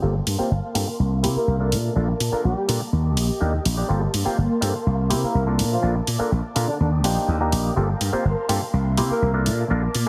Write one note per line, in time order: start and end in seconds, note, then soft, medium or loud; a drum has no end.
0.02 0.19 G1 medium
0.02 0.14 A#3 medium
0.02 2.90 A#3 medium
0.02 0.14 C4 medium
0.02 0.14 F4 medium
0.02 0.14 G4 medium
0.02 0.14 A4 medium
0.02 0.98 F5 medium
0.02 0.98 A5 medium
0.02 1.70 C6 medium
0.27 0.35 G2 medium
0.27 open hi-hat loud
0.38 0.50 A#3 medium
0.38 0.50 C4 medium
0.38 0.50 F4 medium
0.38 0.50 G4 medium
0.38 0.50 C5 loud
0.38 muted slap bass stroke soft
0.51 0.59 G1 medium
0.74 0.83 G2 medium
0.74 0.87 A#3 medium
0.74 0.87 C4 medium
0.74 0.87 F4 medium
0.74 0.87 G4 medium
0.74 0.87 A4 medium
0.74 open hi-hat loud
0.99 1.25 C2 medium
0.99 1.71 E5 medium
1.23 1.35 C3 medium
1.23 1.57 A#3 medium
1.23 1.57 C4 medium
1.23 1.57 E4 medium
1.23 1.57 G4 medium
1.23 1.57 C5 medium
1.23 open hi-hat medium
1.36 1.56 A#3 medium
1.36 1.56 A#4 medium
1.36 muted slap bass stroke soft
1.47 1.74 C2 medium
1.59 1.93 A#3 medium
1.59 1.93 D4 medium
1.59 1.93 F4 medium
1.59 1.93 A4 medium
1.59 1.93 A#4 medium
1.72 1.88 A#2 medium
1.72 2.92 A5 medium
1.72 3.87 D6 medium
1.72 open hi-hat loud
1.96 2.12 A#1 medium
1.96 2.08 A#3 medium
1.96 2.08 D4 medium
1.96 2.08 F4 medium
1.96 2.08 A4 medium
1.96 2.08 A#4 medium
2.20 2.28 A#2 medium
2.20 open hi-hat loud
2.32 2.44 A#3 medium
2.32 2.42 A#3 medium
2.32 2.44 D4 medium
2.32 2.44 F4 medium
2.32 2.44 A4 medium
2.32 2.42 A#4 medium
2.32 2.44 A#4 medium
2.32 muted slap bass stroke soft
2.44 2.53 A#1 medium
2.44 2.81 G3 medium
2.44 2.81 G4 medium
2.68 2.77 A#2 medium
2.68 2.80 A#3 medium
2.68 2.80 D4 medium
2.68 2.80 F4 medium
2.68 2.80 A4 medium
2.68 2.80 A#4 medium
2.68 open hi-hat loud
2.93 3.17 D#2 medium
2.93 3.89 G4 medium
2.93 3.89 D#5 medium
3.17 3.29 A#1 medium
3.17 open hi-hat medium
3.30 muted slap bass stroke soft
3.40 3.58 D#2 medium
3.40 3.53 A#3 medium
3.40 3.53 D4 medium
3.40 3.53 D#4 medium
3.40 3.53 G4 medium
3.40 3.53 A#4 loud
3.65 3.82 A#1 medium
3.65 open hi-hat loud
3.77 3.87 A#3 medium
3.77 3.88 D4 medium
3.77 3.88 D#4 medium
3.77 3.88 G4 medium
3.77 3.88 D5 medium
3.89 4.06 G1 medium
3.89 4.01 A#3 medium
3.89 6.77 A#3 medium
3.89 4.01 C4 medium
3.89 4.01 F4 medium
3.89 4.01 G4 medium
3.89 4.01 A4 medium
3.89 4.85 F5 medium
3.89 4.85 A5 medium
3.89 5.57 C6 medium
4.14 4.22 G2 medium
4.14 open hi-hat loud
4.25 4.37 A#3 medium
4.25 4.37 C4 medium
4.25 4.37 F4 medium
4.25 4.37 G4 medium
4.25 4.37 C5 medium
4.25 muted slap bass stroke soft
4.38 4.46 G1 medium
4.61 4.70 G2 medium
4.61 4.73 A#3 medium
4.61 4.73 C4 medium
4.61 4.74 F4 medium
4.61 4.74 G4 medium
4.61 4.74 A4 medium
4.61 open hi-hat medium
4.86 5.12 C2 medium
4.86 5.58 E5 medium
5.10 5.23 C3 medium
5.10 5.44 A#3 medium
5.10 5.44 C4 medium
5.10 5.44 E4 medium
5.10 5.44 G4 medium
5.10 5.44 C5 medium
5.10 open hi-hat medium
5.23 5.43 A#3 medium
5.23 5.43 A#4 medium
5.23 muted slap bass stroke soft
5.35 5.60 C2 medium
5.47 5.80 A#3 medium
5.47 5.80 D4 medium
5.47 5.80 F4 medium
5.47 5.80 A4 medium
5.47 5.80 A#4 medium
5.59 5.75 A#2 medium
5.59 6.79 A5 medium
5.59 6.79 D6 medium
5.59 open hi-hat loud
5.72 5.92 F3 medium
5.72 5.92 F4 medium
5.82 5.99 A#1 medium
5.82 5.95 A#3 medium
5.82 5.95 D4 medium
5.82 5.95 F4 medium
5.82 5.95 A4 medium
5.82 5.95 A#4 medium
6.07 6.16 A#2 medium
6.07 open hi-hat loud
6.19 6.31 A#3 medium
6.19 6.31 D4 medium
6.19 6.31 F4 medium
6.19 6.31 A4 medium
6.19 6.31 A#4 loud
6.19 muted slap bass stroke soft
6.32 6.40 A#1 medium
6.55 6.64 A#2 medium
6.55 6.67 A#3 medium
6.55 6.67 D4 medium
6.55 6.68 F4 medium
6.55 6.68 A4 medium
6.55 6.68 A#4 medium
6.55 open hi-hat loud
6.68 6.76 D3 medium
6.68 6.76 D4 medium
6.80 7.04 D#2 medium
6.80 6.88 D3 medium
6.80 6.88 D4 medium
6.80 7.76 G5 medium
6.80 7.76 D6 medium
6.80 7.76 D#6 medium
7.04 7.16 A#1 medium
7.04 7.38 A#3 medium
7.04 7.38 D4 medium
7.04 7.38 D#4 medium
7.04 7.38 G4 medium
7.04 7.38 C5 medium
7.04 open hi-hat medium
7.17 muted slap bass stroke soft
7.28 7.54 D#2 medium
7.40 7.74 A#3 medium
7.40 7.74 D4 medium
7.40 7.74 D#4 medium
7.40 7.74 G4 medium
7.40 7.74 A#4 medium
7.52 7.69 A#1 medium
7.52 open hi-hat loud
7.76 7.93 G1 medium
7.76 7.88 A#3 medium
7.76 7.88 C4 medium
7.76 7.89 F4 medium
7.76 7.89 G4 medium
7.76 7.89 A4 medium
7.76 8.72 A#4 medium
7.76 8.72 F5 medium
7.76 8.72 A5 medium
7.76 9.44 C6 medium
8.01 8.09 G2 medium
8.01 open hi-hat loud
8.13 8.24 A#3 medium
8.13 8.24 C4 medium
8.13 8.24 F4 medium
8.13 8.24 G4 medium
8.13 8.25 C5 loud
8.13 muted slap bass stroke soft
8.25 8.33 G1 medium
8.49 8.57 G2 medium
8.49 8.61 A#3 medium
8.49 8.61 C4 medium
8.49 8.61 F4 medium
8.49 8.61 G4 medium
8.49 8.61 A4 medium
8.49 open hi-hat medium
8.73 8.99 C2 medium
8.73 10.09 A#3 medium
8.73 9.45 E5 medium
8.97 9.10 C3 medium
8.97 9.31 A#3 medium
8.97 9.31 C4 medium
8.97 9.31 E4 medium
8.97 9.32 G4 medium
8.97 9.32 C5 medium
8.97 open hi-hat medium
9.10 9.30 A#3 medium
9.10 9.30 A#4 medium
9.10 muted slap bass stroke soft
9.22 9.48 C2 medium
9.34 9.67 A#3 medium
9.34 9.67 D4 medium
9.34 9.67 F4 medium
9.34 9.67 A4 medium
9.34 9.68 A#4 medium
9.46 9.63 A#2 medium
9.46 10.09 A5 medium
9.46 10.09 D6 medium
9.46 open hi-hat medium
9.70 9.87 A#1 medium
9.70 9.82 A#3 medium
9.70 9.82 D4 medium
9.70 9.82 F4 medium
9.70 9.82 A4 medium
9.70 9.82 A#4 medium
9.95 10.03 A#2 medium
9.95 open hi-hat medium